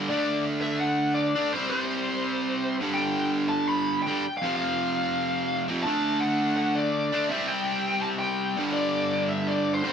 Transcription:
0.09 D3 A3 D4 D5
0.62 E5
0.79 F#5
1.14 D5
1.35 D3 A3 D4
1.52 C3 G3 C5
1.57 C4
1.70 C5
2.80 G2 D3 G3
2.94 G5
3.49 A5
3.67 B5
4.02 G2 G5
4.07 D3 G3
4.37 F5
4.42 F2 C3 F3
4.55 F5
5.68 F2 C3 F3
5.83 D3 A5
5.87 A3 D4
6.20 F#5
6.56 F#5
6.75 D5
7.13 D3 A3 D4
7.29 C3 G3 E5
7.33 C4
7.48 G5
8.02 A5
8.19 G5
8.57 G2 D3 G3
8.73 D5
9.28 E5
9.48 D5
9.74 C5
9.83 G2 D3 G3

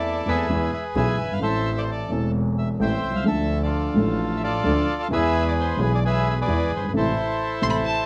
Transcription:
Already playing: E2 E3 A3 C4 E4 A4 D5
0.25 E2 E3 A3 C4 G#4 A4 B4 E5
0.48 E2 E3 G#3 B3 G#4
0.73 E5
0.95 B1 B2 E3 G#3 B3 G#4 B4 E5 G#5
1.18 G1
1.25 F#1
1.31 G1 F5
1.35 G#1
1.40 A1 A2 E3 A3 C4 A4 C5 E5
1.78 D5
1.83 C5
1.92 D5
2.09 E1 E2 E3 A3 C4 A4
2.58 E5
2.79 A1 A2 E3 A3 C4 A4 C5 E5 G5
3.04 C2
3.10 B1
3.15 C2 F5
3.20 C#2
3.24 D2 D3 F3 A3 D4 A4 E5
3.63 F4 A4 D5
3.94 A1 A2 F3 A3 D4 A4
4.37 E5
4.44 F4 A4 D5
4.64 D2 D3 F3 A3 D4 A4
5.02 F5
5.09 E2 E3 G#3 B3 G#4 B4
5.14 E5
5.48 D5
5.60 C5
5.77 B1 B2 E3 G#3 B3
5.81 G#4 B4
5.95 D5
6.05 G#4 B4 E5
6.30 E5
6.41 G#4 B4 D5
6.47 E2 E3 G#3 B3 G#4
6.71 G1
6.76 F#1 C5
6.82 G1
6.88 G#1 B4
6.93 A1 C3 E3 A3 E4 A4
6.98 C5
7.62 A1 C3 E3 A3 C6
7.70 B5
7.85 A5

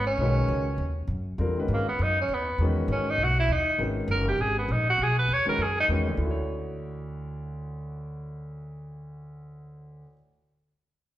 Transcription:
Already playing: G#1
0.07 C#4
0.18 B1 D#3 G#3 C#4 F#4
0.22 B4
0.48 C#2
0.78 D#2
1.07 F#2
1.38 E2 D3 G3 C4 F4 A#4
1.57 D#3 G#3 C#4 F#4 B4
1.68 G#2
1.74 A#3
1.89 B3
1.99 F#2 D#4
2.21 C#4
2.28 D#2
2.33 B3
2.58 E2 D#3 G#3 C#4 F#4
2.62 B4
2.88 G#2
2.92 C#4
3.10 D#4
3.18 B1
3.24 F#4
3.40 E4
3.48 D#2 D#4
3.78 G#1 D#3 G#3 C#4 F#4 B4
4.08 F#1 A#4
4.28 G4
4.38 G#1 G#4
4.58 B3
4.68 A#1 D#4
4.90 F#4
4.98 B1
5.03 G#4
5.19 B4
5.28 D#2
5.33 C#5
5.45 D#3 G#3 C#4 F#4 A#4 B4, muted upright bass stroke
5.58 F#2
5.63 G#4
5.80 D#4
5.88 E2 D#3 G#3 C#4 F#4 B4
6.06 D2
6.12 D3
6.17 D2 E4
6.25 F#4
6.31 C#5

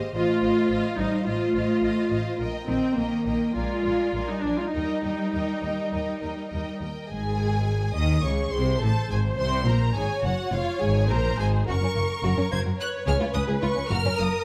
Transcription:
Already playing: C5 D#5 F5
0.14 A1 A3 F4 C5 D#5 F5
0.41 A1 C5 D#5 F5
0.69 A1 C5 D#5 F5
0.98 A1 G3 D#4 C5 D#5 F5
1.25 A1 A3 F4 C5 D#5 F5
1.54 A1 C5 D#5 F5
1.82 A1 C5 D#5 F5
2.10 A1 C5 D#5 F5
2.39 A#1 A#4 D#5 G5
2.68 A#1 D#3 C4 A#4 D#5 G5
2.96 A#1 D#3 A#3 A#4 D#5 G5
3.25 A#1 A#4 D#5 G5
3.55 A#1 G#3 F4 A#4 D5 G#5
3.84 A#1 A#4 D5 G#5
4.13 A#1 A#4 D5 G#5
4.28 G3 D#4
4.42 A#1 F3 D4 A#4 D5 G#5
4.58 G#3 F4
4.72 D#2 G3 D#4 A#4 D#5 G5
5.02 D#2 A#4 D#5 G5
5.32 D#2 A#4 D#5 G5
5.62 D#2 A#4 D#5 G5
5.92 D#2 A#4 D#5 G5
6.20 D#2 A#4 D#5 G5
6.50 D#2 A#4 D#5 G5
6.79 D#2 A#4 D#5 G5
7.09 G#1 G#2 G#4 G#5
7.96 D#2 D#3 D#5 D#6
8.23 C#2 C#3 G#4 C#5 C#6
8.52 C2 C3 C5 C6
8.80 A1 A2 A4 C5 A5
9.09 G#1 G#2 G#4 G#5
9.37 C2 C3 C5 C6
9.66 A#1 A#2 A#4 A#5
9.95 G#1 G#2 G#4 C#5 G#5
10.22 F#1 F#2 F#4 F#5
10.52 F1 F2 F4 C#5 F5
10.80 G#1 G#2 G#4 G#5
11.08 A#1 A#2 A#4 C5 A#5
11.37 G#1 G#2 G#4 G#5
11.66 F#1 F#2 F#4 A#4 C#6
11.80 F#2 C#4
11.94 F#1 F#2 A#3
12.23 F#1 F#2 F#4 A#4
12.36 F#2 C#4
12.51 F#1 F#2 A#3 C5 G#6
12.65 F#2 F#4
12.78 B4 C#5 F#6
13.07 C#2 G#4 F6
13.21 C#2 F4
13.34 C#2 C#4 B4 D#6
13.47 C#2 G#4
13.62 C#2 F4 C#6
13.76 C#2 C#4
13.90 F#1 F#2 F#4 A#4 F6
14.05 F#2 C#4
14.18 F#1 F#2 A#3 D#6

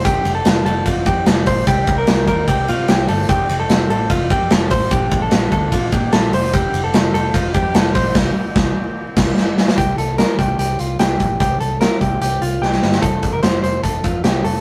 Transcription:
Already playing: F1 F3 G3 A3 C4 G4
0.05 G4, kick, hi-hat pedal, ride
0.25 F1, ride
0.35 A4
0.45 F1, snare, ride
0.66 F1 A4, ride
0.86 F1 F4, kick, ride
1.06 F2 G4, kick, ride
1.26 F1 A4, snare, ride
1.46 A#1 C5, kick, open hi-hat, ride
1.67 C2 D#3 A#3 G4, kick, hi-hat pedal, ride
1.87 C2, kick, ride
1.98 A#4
2.07 C2, snare, ride
2.28 D#2 A#4, kick, ride
2.48 C2 G4, kick, ride
2.68 C3 F4, ride
2.88 C2 G4, snare, ride
3.08 G1 A4, open hi-hat, ride
3.29 F1 F3 A3 G4, kick, hi-hat pedal, ride
3.49 F1, ride
3.60 A4
3.69 F1, snare, ride
3.90 A1 A4, ride
4.10 F1 F4, kick, ride
4.30 F2 G4, kick, ride
4.50 F1 A4, snare, ride
4.70 A1 C5, kick, open hi-hat, ride
4.91 A#1 F3 A#3 D4 G4, kick, hi-hat pedal, ride
5.11 A#1, kick, ride
5.22 A4
5.31 A#1, snare, ride
5.52 D2 A4, kick, ride
5.72 A#1 F4, kick, ride
5.92 A#2 G4, kick, ride
6.13 A#1 A4, snare, ride
6.33 F1 G3 A3 C4 G4 C5, open hi-hat, ride
6.54 G4, kick, hi-hat pedal, ride
6.74 F1, ride
6.84 A4
6.94 F1, snare, ride
7.14 F1 A4, ride
7.34 F1 F4, kick, ride
7.54 F2 G4, kick, ride
7.75 F1 A4, snare, ride
7.95 A#1 C5, kick, open hi-hat, ride
8.15 C2 D#3 A#3 C4, kick, snare, crash
8.56 C2, kick, snare
9.16 C2, kick, snare, crash
9.38 snare
9.58 snare
9.68 snare
9.78 C2 G4, kick, closed hi-hat
9.97 C2 A4, closed hi-hat
10.18 A#4, snare, closed hi-hat
10.39 C2 G4, kick, closed hi-hat
10.59 C2 G4, closed hi-hat
10.79 C2 F4, closed hi-hat
10.99 C2 G4, snare, closed hi-hat
11.20 A#1, kick, closed hi-hat
11.40 C2 G4, kick, closed hi-hat
11.60 C2 A4, closed hi-hat
11.81 A#4, snare, closed hi-hat
12.01 C2 G4, kick, closed hi-hat
12.21 C2 G4, closed hi-hat
12.42 C2 F4, closed hi-hat
12.62 C2 G4, snare
12.73 snare
12.83 G1, snare
12.92 snare
13.02 F1 A4, kick, closed hi-hat
13.23 kick, closed hi-hat
13.33 F1 A#4
13.43 F1 C5, snare, closed hi-hat
13.63 F1 C5, closed hi-hat
13.83 F1 A4, kick, closed hi-hat
14.04 F2 F4, kick, closed hi-hat
14.24 C2 G4, snare, closed hi-hat
14.44 F1 A4, open hi-hat

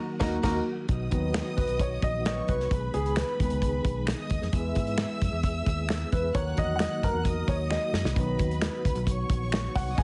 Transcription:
Already playing: D#3 F#3 A#3 F#4
0.20 D#2 A#3 D#4 F#4 A#4 D#5 A#5, kick, snare, crash
0.26 F#4
0.43 D#2 A#3 D#4 F#4 A#4 D#5 A#5, kick, snare, crash
0.49 F#4
0.89 B1 D#3 F#3 B3 F#4 D#5 D#6, kick, closed hi-hat
1.11 D#2 D#3 F#3 B3, kick, closed hi-hat
1.34 finger snap, snare, closed hi-hat
1.57 C#2 B4, kick, closed hi-hat
1.67 B1, closed hi-hat
1.79 C#5, kick, closed hi-hat
2.02 A#1 D#5, kick, closed hi-hat
2.25 D#3 F#3 B3 C#5 D#5 C#6, finger snap, snare, closed hi-hat
2.48 C2 B4, kick, closed hi-hat
2.60 snare
2.71 B1 G#3 G#4 B4 B5, kick, closed hi-hat
2.94 C#2 G#4, closed hi-hat
3.06 closed hi-hat
3.16 B4, finger snap, snare, closed hi-hat
3.39 D#2 D#3 G#3 B3, kick, closed hi-hat
3.50 C#2, closed hi-hat
3.62 kick, closed hi-hat
3.85 B1, kick, closed hi-hat
4.07 D#5 D#6, finger snap, snare, closed hi-hat
4.30 D#2, kick, closed hi-hat
4.42 F2, snare
4.52 E2 E3 G#3 B3 E4 E5 E6, kick, closed hi-hat
4.75 G#2, kick, closed hi-hat
4.87 closed hi-hat
4.98 finger snap, snare, closed hi-hat
5.21 F#2, kick, closed hi-hat
5.33 E2
5.43 kick, closed hi-hat
5.66 D#2, kick, closed hi-hat
5.89 finger snap, snare, closed hi-hat
6.12 E2 B4, kick, closed hi-hat
6.34 D#2 D#3 F#3 A#3 F#4 C#5 F#5 F#6, kick, closed hi-hat
6.57 E2 D#5, kick, closed hi-hat
6.76 F#5, finger snap
6.80 D#5, snare, closed hi-hat
7.03 F#2 A#4, kick, closed hi-hat
7.14 E2
7.25 D#5 D#6, kick, closed hi-hat
7.48 D#2 C#5, kick, closed hi-hat
7.71 D#5, finger snap, snare
7.93 F#2, snare
8.04 C2, snare
8.15 B1 D#3 F#3 B3 B4 B5, kick, closed hi-hat
8.39 D#2, kick, closed hi-hat
8.51 closed hi-hat
8.62 finger snap, snare, closed hi-hat
8.85 C#2, kick, closed hi-hat
8.95 B1, closed hi-hat
9.07 C#5 C#6, kick, closed hi-hat
9.30 A#1, kick, closed hi-hat
9.52 finger snap, snare, closed hi-hat
9.75 C2 F#5, kick, snare, open hi-hat
9.96 B1 G#3 G#4 D#5 G#5 D#6, kick, closed hi-hat

